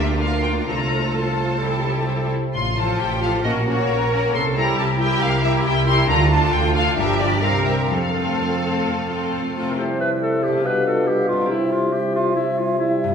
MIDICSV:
0, 0, Header, 1, 11, 480
1, 0, Start_track
1, 0, Key_signature, -1, "major"
1, 0, Tempo, 459418
1, 719, Time_signature, 4, 2, 24, 8
1, 3602, Tempo, 440529
1, 7442, Tempo, 470219
1, 10322, Key_signature, 0, "major"
1, 10322, Tempo, 427960
1, 14085, End_track
2, 0, Start_track
2, 0, Title_t, "Violin section"
2, 0, Program_c, 0, 48
2, 230, Note_on_c, 0, 77, 55
2, 451, Note_on_c, 0, 79, 46
2, 469, Note_off_c, 0, 77, 0
2, 535, Note_off_c, 0, 79, 0
2, 695, Note_on_c, 0, 82, 50
2, 1187, Note_off_c, 0, 82, 0
2, 1200, Note_on_c, 0, 81, 42
2, 2413, Note_off_c, 0, 81, 0
2, 2651, Note_on_c, 0, 84, 54
2, 2874, Note_off_c, 0, 84, 0
2, 2902, Note_on_c, 0, 81, 47
2, 3136, Note_off_c, 0, 81, 0
2, 3148, Note_on_c, 0, 79, 55
2, 3369, Note_on_c, 0, 77, 51
2, 3376, Note_off_c, 0, 79, 0
2, 3452, Note_off_c, 0, 77, 0
2, 3596, Note_on_c, 0, 75, 56
2, 3683, Note_off_c, 0, 75, 0
2, 3855, Note_on_c, 0, 73, 56
2, 4563, Note_off_c, 0, 73, 0
2, 4583, Note_on_c, 0, 84, 65
2, 4670, Note_off_c, 0, 84, 0
2, 4825, Note_on_c, 0, 82, 57
2, 5052, Note_off_c, 0, 82, 0
2, 5059, Note_on_c, 0, 81, 57
2, 5146, Note_off_c, 0, 81, 0
2, 5304, Note_on_c, 0, 79, 64
2, 5530, Note_off_c, 0, 79, 0
2, 5533, Note_on_c, 0, 77, 74
2, 5768, Note_off_c, 0, 77, 0
2, 5772, Note_on_c, 0, 76, 69
2, 5859, Note_off_c, 0, 76, 0
2, 6021, Note_on_c, 0, 79, 68
2, 6242, Note_on_c, 0, 84, 63
2, 6244, Note_off_c, 0, 79, 0
2, 6473, Note_off_c, 0, 84, 0
2, 6482, Note_on_c, 0, 82, 71
2, 6715, Note_off_c, 0, 82, 0
2, 6718, Note_on_c, 0, 81, 63
2, 6954, Note_off_c, 0, 81, 0
2, 6969, Note_on_c, 0, 79, 70
2, 7205, Note_off_c, 0, 79, 0
2, 7205, Note_on_c, 0, 77, 62
2, 7440, Note_on_c, 0, 76, 73
2, 7441, Note_off_c, 0, 77, 0
2, 7667, Note_off_c, 0, 76, 0
2, 7673, Note_on_c, 0, 74, 63
2, 7904, Note_on_c, 0, 77, 66
2, 7908, Note_off_c, 0, 74, 0
2, 8136, Note_on_c, 0, 76, 45
2, 8145, Note_off_c, 0, 77, 0
2, 8386, Note_off_c, 0, 76, 0
2, 8401, Note_on_c, 0, 77, 48
2, 10063, Note_off_c, 0, 77, 0
2, 14085, End_track
3, 0, Start_track
3, 0, Title_t, "Flute"
3, 0, Program_c, 1, 73
3, 10318, Note_on_c, 1, 76, 39
3, 11290, Note_on_c, 1, 77, 43
3, 11307, Note_off_c, 1, 76, 0
3, 12246, Note_off_c, 1, 77, 0
3, 12262, Note_on_c, 1, 76, 48
3, 14085, Note_off_c, 1, 76, 0
3, 14085, End_track
4, 0, Start_track
4, 0, Title_t, "Violin section"
4, 0, Program_c, 2, 48
4, 0, Note_on_c, 2, 65, 45
4, 0, Note_on_c, 2, 70, 40
4, 681, Note_off_c, 2, 70, 0
4, 730, Note_on_c, 2, 72, 32
4, 1655, Note_off_c, 2, 65, 0
4, 1699, Note_on_c, 2, 67, 34
4, 2405, Note_off_c, 2, 67, 0
4, 2409, Note_off_c, 2, 72, 0
4, 2891, Note_on_c, 2, 72, 29
4, 2892, Note_on_c, 2, 69, 30
4, 3353, Note_off_c, 2, 72, 0
4, 3357, Note_off_c, 2, 69, 0
4, 3365, Note_on_c, 2, 72, 32
4, 3368, Note_on_c, 2, 69, 31
4, 3596, Note_off_c, 2, 72, 0
4, 3598, Note_off_c, 2, 69, 0
4, 3605, Note_on_c, 2, 66, 35
4, 3606, Note_on_c, 2, 70, 30
4, 3842, Note_off_c, 2, 66, 0
4, 3843, Note_off_c, 2, 70, 0
4, 3856, Note_on_c, 2, 70, 34
4, 3864, Note_on_c, 2, 66, 34
4, 4327, Note_off_c, 2, 70, 0
4, 4331, Note_off_c, 2, 66, 0
4, 4348, Note_on_c, 2, 70, 33
4, 4350, Note_on_c, 2, 66, 34
4, 4576, Note_off_c, 2, 70, 0
4, 4577, Note_off_c, 2, 66, 0
4, 4816, Note_on_c, 2, 67, 37
4, 4818, Note_on_c, 2, 70, 31
4, 5281, Note_off_c, 2, 67, 0
4, 5282, Note_off_c, 2, 70, 0
4, 5299, Note_on_c, 2, 67, 40
4, 5305, Note_on_c, 2, 70, 42
4, 5757, Note_off_c, 2, 70, 0
4, 5761, Note_off_c, 2, 67, 0
4, 5770, Note_on_c, 2, 70, 37
4, 5774, Note_on_c, 2, 67, 40
4, 6231, Note_off_c, 2, 70, 0
4, 6233, Note_off_c, 2, 67, 0
4, 6246, Note_on_c, 2, 70, 41
4, 6251, Note_on_c, 2, 67, 39
4, 6475, Note_off_c, 2, 70, 0
4, 6478, Note_off_c, 2, 67, 0
4, 6485, Note_on_c, 2, 65, 39
4, 6486, Note_on_c, 2, 69, 38
4, 6709, Note_off_c, 2, 65, 0
4, 6709, Note_off_c, 2, 69, 0
4, 6722, Note_on_c, 2, 69, 41
4, 6723, Note_on_c, 2, 65, 43
4, 7188, Note_off_c, 2, 69, 0
4, 7193, Note_off_c, 2, 65, 0
4, 7201, Note_on_c, 2, 69, 41
4, 7204, Note_on_c, 2, 65, 43
4, 7438, Note_off_c, 2, 69, 0
4, 7440, Note_off_c, 2, 65, 0
4, 7450, Note_on_c, 2, 67, 46
4, 7452, Note_on_c, 2, 70, 41
4, 7657, Note_off_c, 2, 70, 0
4, 7659, Note_off_c, 2, 67, 0
4, 7670, Note_on_c, 2, 70, 34
4, 7672, Note_on_c, 2, 67, 38
4, 7891, Note_off_c, 2, 70, 0
4, 7894, Note_off_c, 2, 67, 0
4, 7903, Note_on_c, 2, 70, 38
4, 7906, Note_on_c, 2, 67, 35
4, 8116, Note_off_c, 2, 70, 0
4, 8122, Note_off_c, 2, 67, 0
4, 8129, Note_on_c, 2, 70, 30
4, 8135, Note_on_c, 2, 67, 31
4, 8377, Note_off_c, 2, 70, 0
4, 8380, Note_off_c, 2, 67, 0
4, 8634, Note_on_c, 2, 65, 27
4, 8637, Note_on_c, 2, 69, 28
4, 9108, Note_off_c, 2, 65, 0
4, 9114, Note_off_c, 2, 69, 0
4, 9120, Note_on_c, 2, 65, 27
4, 9125, Note_on_c, 2, 69, 28
4, 9587, Note_off_c, 2, 65, 0
4, 9588, Note_off_c, 2, 69, 0
4, 9599, Note_on_c, 2, 65, 24
4, 9601, Note_on_c, 2, 69, 29
4, 10078, Note_off_c, 2, 65, 0
4, 10078, Note_off_c, 2, 69, 0
4, 10090, Note_on_c, 2, 65, 26
4, 10091, Note_on_c, 2, 69, 25
4, 10317, Note_off_c, 2, 65, 0
4, 10317, Note_off_c, 2, 69, 0
4, 14085, End_track
5, 0, Start_track
5, 0, Title_t, "Cello section"
5, 0, Program_c, 3, 48
5, 0, Note_on_c, 3, 67, 46
5, 244, Note_off_c, 3, 67, 0
5, 255, Note_on_c, 3, 65, 44
5, 717, Note_off_c, 3, 65, 0
5, 733, Note_on_c, 3, 69, 39
5, 2391, Note_off_c, 3, 69, 0
5, 2666, Note_on_c, 3, 65, 36
5, 3103, Note_off_c, 3, 65, 0
5, 3139, Note_on_c, 3, 67, 39
5, 3606, Note_off_c, 3, 67, 0
5, 3611, Note_on_c, 3, 66, 40
5, 4084, Note_off_c, 3, 66, 0
5, 4103, Note_on_c, 3, 70, 48
5, 4576, Note_on_c, 3, 69, 44
5, 4580, Note_off_c, 3, 70, 0
5, 5042, Note_off_c, 3, 69, 0
5, 5045, Note_on_c, 3, 67, 46
5, 5980, Note_off_c, 3, 67, 0
5, 6007, Note_on_c, 3, 64, 51
5, 6479, Note_off_c, 3, 64, 0
5, 6484, Note_on_c, 3, 65, 50
5, 7444, Note_on_c, 3, 67, 54
5, 7446, Note_off_c, 3, 65, 0
5, 7899, Note_off_c, 3, 67, 0
5, 7908, Note_on_c, 3, 70, 49
5, 8391, Note_off_c, 3, 70, 0
5, 8404, Note_on_c, 3, 69, 37
5, 10098, Note_off_c, 3, 69, 0
5, 14085, End_track
6, 0, Start_track
6, 0, Title_t, "Clarinet"
6, 0, Program_c, 4, 71
6, 10222, Note_on_c, 4, 70, 34
6, 10319, Note_on_c, 4, 72, 50
6, 10335, Note_off_c, 4, 70, 0
6, 10551, Note_off_c, 4, 72, 0
6, 10557, Note_on_c, 4, 71, 57
6, 10668, Note_off_c, 4, 71, 0
6, 10800, Note_on_c, 4, 69, 54
6, 11037, Note_on_c, 4, 67, 59
6, 11054, Note_off_c, 4, 69, 0
6, 11290, Note_on_c, 4, 71, 63
6, 11307, Note_off_c, 4, 67, 0
6, 11517, Note_off_c, 4, 71, 0
6, 11524, Note_on_c, 4, 69, 51
6, 11752, Note_on_c, 4, 67, 55
6, 11769, Note_off_c, 4, 69, 0
6, 11986, Note_off_c, 4, 67, 0
6, 11993, Note_on_c, 4, 65, 60
6, 12231, Note_off_c, 4, 65, 0
6, 12238, Note_on_c, 4, 64, 63
6, 12472, Note_off_c, 4, 64, 0
6, 12479, Note_on_c, 4, 65, 56
6, 12712, Note_on_c, 4, 67, 56
6, 12729, Note_off_c, 4, 65, 0
6, 12959, Note_off_c, 4, 67, 0
6, 12968, Note_on_c, 4, 65, 64
6, 13185, Note_off_c, 4, 65, 0
6, 13192, Note_on_c, 4, 64, 58
6, 13451, Note_on_c, 4, 65, 58
6, 13468, Note_off_c, 4, 64, 0
6, 13679, Note_off_c, 4, 65, 0
6, 13686, Note_on_c, 4, 64, 63
6, 14037, Note_off_c, 4, 64, 0
6, 14085, End_track
7, 0, Start_track
7, 0, Title_t, "Harp"
7, 0, Program_c, 5, 46
7, 0, Note_on_c, 5, 50, 45
7, 0, Note_on_c, 5, 53, 34
7, 0, Note_on_c, 5, 58, 31
7, 0, Note_on_c, 5, 70, 36
7, 4, Note_on_c, 5, 62, 32
7, 228, Note_off_c, 5, 70, 0
7, 241, Note_on_c, 5, 70, 32
7, 467, Note_off_c, 5, 62, 0
7, 480, Note_on_c, 5, 62, 32
7, 725, Note_on_c, 5, 48, 37
7, 737, Note_off_c, 5, 58, 0
7, 739, Note_off_c, 5, 62, 0
7, 739, Note_off_c, 5, 70, 0
7, 740, Note_off_c, 5, 50, 0
7, 968, Note_on_c, 5, 65, 28
7, 1216, Note_on_c, 5, 72, 27
7, 1446, Note_off_c, 5, 65, 0
7, 1459, Note_on_c, 5, 65, 24
7, 1694, Note_off_c, 5, 48, 0
7, 1707, Note_on_c, 5, 48, 34
7, 1717, Note_off_c, 5, 65, 0
7, 1724, Note_off_c, 5, 53, 0
7, 1948, Note_on_c, 5, 64, 24
7, 2170, Note_off_c, 5, 72, 0
7, 2182, Note_on_c, 5, 72, 30
7, 2409, Note_off_c, 5, 64, 0
7, 2422, Note_on_c, 5, 64, 26
7, 2658, Note_on_c, 5, 45, 34
7, 2678, Note_off_c, 5, 64, 0
7, 2681, Note_off_c, 5, 48, 0
7, 2889, Note_on_c, 5, 65, 26
7, 3114, Note_off_c, 5, 72, 0
7, 3126, Note_on_c, 5, 72, 31
7, 3359, Note_off_c, 5, 65, 0
7, 3371, Note_on_c, 5, 65, 30
7, 3600, Note_on_c, 5, 46, 36
7, 3619, Note_off_c, 5, 72, 0
7, 3623, Note_off_c, 5, 45, 0
7, 3624, Note_off_c, 5, 65, 0
7, 3845, Note_on_c, 5, 61, 29
7, 4087, Note_on_c, 5, 70, 33
7, 4315, Note_off_c, 5, 61, 0
7, 4328, Note_on_c, 5, 61, 35
7, 4573, Note_on_c, 5, 48, 38
7, 4590, Note_off_c, 5, 61, 0
7, 4591, Note_off_c, 5, 46, 0
7, 4807, Note_on_c, 5, 64, 29
7, 5034, Note_off_c, 5, 70, 0
7, 5047, Note_on_c, 5, 70, 39
7, 5273, Note_off_c, 5, 64, 0
7, 5286, Note_on_c, 5, 64, 33
7, 5525, Note_on_c, 5, 55, 36
7, 5748, Note_off_c, 5, 64, 0
7, 5761, Note_on_c, 5, 64, 36
7, 5981, Note_off_c, 5, 70, 0
7, 5994, Note_on_c, 5, 70, 42
7, 6226, Note_off_c, 5, 64, 0
7, 6239, Note_on_c, 5, 64, 45
7, 6471, Note_on_c, 5, 50, 52
7, 6492, Note_off_c, 5, 70, 0
7, 6495, Note_off_c, 5, 48, 0
7, 6495, Note_off_c, 5, 55, 0
7, 6496, Note_off_c, 5, 64, 0
7, 6708, Note_on_c, 5, 62, 38
7, 6953, Note_on_c, 5, 69, 41
7, 7185, Note_off_c, 5, 62, 0
7, 7198, Note_on_c, 5, 62, 34
7, 7443, Note_on_c, 5, 43, 51
7, 7458, Note_off_c, 5, 50, 0
7, 7458, Note_off_c, 5, 69, 0
7, 7667, Note_on_c, 5, 65, 32
7, 7672, Note_on_c, 5, 70, 34
7, 7904, Note_on_c, 5, 48, 39
7, 7923, Note_off_c, 5, 65, 0
7, 7926, Note_off_c, 5, 62, 0
7, 7927, Note_off_c, 5, 43, 0
7, 8150, Note_off_c, 5, 70, 0
7, 8154, Note_on_c, 5, 67, 31
7, 8162, Note_on_c, 5, 70, 33
7, 8392, Note_on_c, 5, 53, 37
7, 8409, Note_off_c, 5, 48, 0
7, 8415, Note_off_c, 5, 67, 0
7, 8419, Note_off_c, 5, 70, 0
7, 8639, Note_on_c, 5, 65, 27
7, 8883, Note_on_c, 5, 72, 30
7, 9114, Note_off_c, 5, 65, 0
7, 9126, Note_on_c, 5, 65, 24
7, 9370, Note_on_c, 5, 60, 25
7, 9603, Note_off_c, 5, 65, 0
7, 9615, Note_on_c, 5, 65, 23
7, 9846, Note_off_c, 5, 72, 0
7, 9858, Note_on_c, 5, 72, 28
7, 10086, Note_off_c, 5, 65, 0
7, 10098, Note_on_c, 5, 65, 25
7, 10143, Note_on_c, 5, 48, 34
7, 10180, Note_off_c, 5, 60, 0
7, 10192, Note_on_c, 5, 60, 26
7, 10240, Note_on_c, 5, 64, 31
7, 10283, Note_on_c, 5, 67, 32
7, 10342, Note_off_c, 5, 53, 0
7, 10345, Note_off_c, 5, 65, 0
7, 11091, Note_on_c, 5, 47, 35
7, 11144, Note_on_c, 5, 62, 32
7, 11193, Note_on_c, 5, 65, 31
7, 11210, Note_off_c, 5, 48, 0
7, 11229, Note_off_c, 5, 67, 0
7, 11237, Note_off_c, 5, 60, 0
7, 11243, Note_on_c, 5, 67, 29
7, 11264, Note_off_c, 5, 64, 0
7, 11313, Note_off_c, 5, 72, 0
7, 12041, Note_on_c, 5, 48, 42
7, 12089, Note_on_c, 5, 60, 30
7, 12138, Note_on_c, 5, 64, 36
7, 12165, Note_off_c, 5, 47, 0
7, 12173, Note_off_c, 5, 67, 0
7, 12186, Note_on_c, 5, 67, 32
7, 12192, Note_off_c, 5, 62, 0
7, 12217, Note_off_c, 5, 65, 0
7, 13962, Note_on_c, 5, 43, 48
7, 14008, Note_on_c, 5, 59, 36
7, 14078, Note_off_c, 5, 48, 0
7, 14085, Note_off_c, 5, 43, 0
7, 14085, Note_off_c, 5, 59, 0
7, 14085, Note_off_c, 5, 60, 0
7, 14085, Note_off_c, 5, 64, 0
7, 14085, Note_off_c, 5, 67, 0
7, 14085, End_track
8, 0, Start_track
8, 0, Title_t, "French horn section"
8, 0, Program_c, 6, 60
8, 10330, Note_on_c, 6, 55, 41
8, 10335, Note_on_c, 6, 64, 46
8, 11248, Note_off_c, 6, 55, 0
8, 11251, Note_off_c, 6, 64, 0
8, 11291, Note_on_c, 6, 55, 41
8, 11298, Note_on_c, 6, 65, 40
8, 11749, Note_off_c, 6, 55, 0
8, 11753, Note_off_c, 6, 65, 0
8, 11763, Note_on_c, 6, 55, 40
8, 11766, Note_on_c, 6, 65, 44
8, 12234, Note_off_c, 6, 55, 0
8, 12236, Note_off_c, 6, 65, 0
8, 12250, Note_on_c, 6, 55, 43
8, 12252, Note_on_c, 6, 64, 43
8, 12701, Note_off_c, 6, 55, 0
8, 12703, Note_off_c, 6, 64, 0
8, 12715, Note_on_c, 6, 55, 47
8, 12716, Note_on_c, 6, 64, 41
8, 13187, Note_off_c, 6, 55, 0
8, 13188, Note_off_c, 6, 64, 0
8, 13210, Note_on_c, 6, 55, 39
8, 13213, Note_on_c, 6, 64, 44
8, 13664, Note_off_c, 6, 55, 0
8, 13666, Note_off_c, 6, 64, 0
8, 13677, Note_on_c, 6, 55, 52
8, 13679, Note_on_c, 6, 64, 46
8, 14085, Note_off_c, 6, 55, 0
8, 14085, Note_off_c, 6, 64, 0
8, 14085, End_track
9, 0, Start_track
9, 0, Title_t, "Viola section"
9, 0, Program_c, 7, 48
9, 0, Note_on_c, 7, 58, 38
9, 0, Note_on_c, 7, 62, 38
9, 675, Note_off_c, 7, 58, 0
9, 677, Note_off_c, 7, 62, 0
9, 720, Note_on_c, 7, 57, 32
9, 720, Note_on_c, 7, 65, 32
9, 1654, Note_off_c, 7, 57, 0
9, 1654, Note_off_c, 7, 65, 0
9, 1692, Note_on_c, 7, 64, 32
9, 1693, Note_on_c, 7, 55, 30
9, 2401, Note_off_c, 7, 64, 0
9, 2402, Note_off_c, 7, 55, 0
9, 2890, Note_on_c, 7, 53, 30
9, 2894, Note_on_c, 7, 65, 31
9, 3356, Note_off_c, 7, 53, 0
9, 3358, Note_off_c, 7, 65, 0
9, 3368, Note_on_c, 7, 53, 34
9, 3372, Note_on_c, 7, 65, 34
9, 3598, Note_off_c, 7, 53, 0
9, 3598, Note_on_c, 7, 61, 30
9, 3599, Note_on_c, 7, 58, 33
9, 3600, Note_off_c, 7, 65, 0
9, 3828, Note_off_c, 7, 61, 0
9, 3830, Note_off_c, 7, 58, 0
9, 3841, Note_on_c, 7, 61, 31
9, 3843, Note_on_c, 7, 58, 34
9, 4312, Note_off_c, 7, 61, 0
9, 4314, Note_off_c, 7, 58, 0
9, 4325, Note_on_c, 7, 61, 36
9, 4327, Note_on_c, 7, 58, 35
9, 4564, Note_off_c, 7, 61, 0
9, 4566, Note_off_c, 7, 58, 0
9, 4805, Note_on_c, 7, 55, 41
9, 4807, Note_on_c, 7, 64, 37
9, 5275, Note_off_c, 7, 55, 0
9, 5276, Note_off_c, 7, 64, 0
9, 5287, Note_on_c, 7, 55, 42
9, 5291, Note_on_c, 7, 64, 43
9, 5742, Note_off_c, 7, 64, 0
9, 5748, Note_off_c, 7, 55, 0
9, 5755, Note_on_c, 7, 64, 45
9, 5761, Note_on_c, 7, 55, 41
9, 6223, Note_off_c, 7, 64, 0
9, 6227, Note_off_c, 7, 55, 0
9, 6241, Note_on_c, 7, 64, 44
9, 6242, Note_on_c, 7, 55, 44
9, 6473, Note_off_c, 7, 64, 0
9, 6474, Note_off_c, 7, 55, 0
9, 6477, Note_on_c, 7, 62, 39
9, 6480, Note_on_c, 7, 50, 37
9, 6709, Note_off_c, 7, 62, 0
9, 6714, Note_off_c, 7, 50, 0
9, 6722, Note_on_c, 7, 62, 43
9, 6725, Note_on_c, 7, 50, 44
9, 7192, Note_off_c, 7, 62, 0
9, 7194, Note_off_c, 7, 50, 0
9, 7206, Note_on_c, 7, 62, 45
9, 7208, Note_on_c, 7, 50, 43
9, 7431, Note_off_c, 7, 62, 0
9, 7441, Note_on_c, 7, 53, 39
9, 7442, Note_off_c, 7, 50, 0
9, 7444, Note_on_c, 7, 62, 36
9, 7665, Note_off_c, 7, 53, 0
9, 7670, Note_off_c, 7, 62, 0
9, 7677, Note_on_c, 7, 53, 35
9, 7683, Note_on_c, 7, 62, 39
9, 7905, Note_off_c, 7, 53, 0
9, 7905, Note_on_c, 7, 60, 35
9, 7906, Note_on_c, 7, 55, 35
9, 7908, Note_off_c, 7, 62, 0
9, 8138, Note_off_c, 7, 55, 0
9, 8140, Note_off_c, 7, 60, 0
9, 8150, Note_on_c, 7, 55, 35
9, 8151, Note_on_c, 7, 60, 35
9, 8388, Note_off_c, 7, 55, 0
9, 8389, Note_off_c, 7, 60, 0
9, 8643, Note_on_c, 7, 60, 31
9, 8646, Note_on_c, 7, 57, 30
9, 9112, Note_off_c, 7, 60, 0
9, 9116, Note_off_c, 7, 57, 0
9, 9125, Note_on_c, 7, 60, 30
9, 9128, Note_on_c, 7, 57, 30
9, 9599, Note_off_c, 7, 60, 0
9, 9601, Note_off_c, 7, 57, 0
9, 9613, Note_on_c, 7, 60, 27
9, 9614, Note_on_c, 7, 57, 26
9, 10078, Note_off_c, 7, 60, 0
9, 10082, Note_off_c, 7, 57, 0
9, 10090, Note_on_c, 7, 60, 27
9, 10094, Note_on_c, 7, 57, 28
9, 10317, Note_off_c, 7, 60, 0
9, 10319, Note_off_c, 7, 57, 0
9, 14085, End_track
10, 0, Start_track
10, 0, Title_t, "Bassoon"
10, 0, Program_c, 8, 70
10, 10313, Note_on_c, 8, 48, 46
10, 11279, Note_on_c, 8, 47, 49
10, 11295, Note_off_c, 8, 48, 0
10, 12241, Note_on_c, 8, 48, 50
10, 12257, Note_off_c, 8, 47, 0
10, 14085, Note_off_c, 8, 48, 0
10, 14085, End_track
11, 0, Start_track
11, 0, Title_t, "Double bass section"
11, 0, Program_c, 10, 48
11, 0, Note_on_c, 10, 38, 53
11, 719, Note_off_c, 10, 38, 0
11, 725, Note_on_c, 10, 36, 41
11, 2414, Note_off_c, 10, 36, 0
11, 2662, Note_on_c, 10, 33, 41
11, 3078, Note_off_c, 10, 33, 0
11, 3129, Note_on_c, 10, 33, 42
11, 3546, Note_off_c, 10, 33, 0
11, 3601, Note_on_c, 10, 34, 45
11, 4031, Note_off_c, 10, 34, 0
11, 4086, Note_on_c, 10, 34, 45
11, 4515, Note_off_c, 10, 34, 0
11, 4569, Note_on_c, 10, 36, 53
11, 4991, Note_off_c, 10, 36, 0
11, 5053, Note_on_c, 10, 36, 43
11, 5472, Note_off_c, 10, 36, 0
11, 5527, Note_on_c, 10, 36, 54
11, 5946, Note_off_c, 10, 36, 0
11, 6000, Note_on_c, 10, 36, 60
11, 6420, Note_off_c, 10, 36, 0
11, 6471, Note_on_c, 10, 38, 65
11, 6898, Note_off_c, 10, 38, 0
11, 6958, Note_on_c, 10, 38, 52
11, 7385, Note_off_c, 10, 38, 0
11, 7440, Note_on_c, 10, 31, 54
11, 7851, Note_off_c, 10, 31, 0
11, 7909, Note_on_c, 10, 36, 45
11, 8334, Note_off_c, 10, 36, 0
11, 8389, Note_on_c, 10, 41, 41
11, 8824, Note_off_c, 10, 41, 0
11, 8886, Note_on_c, 10, 41, 35
11, 9309, Note_off_c, 10, 41, 0
11, 9369, Note_on_c, 10, 41, 36
11, 9796, Note_off_c, 10, 41, 0
11, 9853, Note_on_c, 10, 41, 33
11, 10270, Note_off_c, 10, 41, 0
11, 14085, End_track
0, 0, End_of_file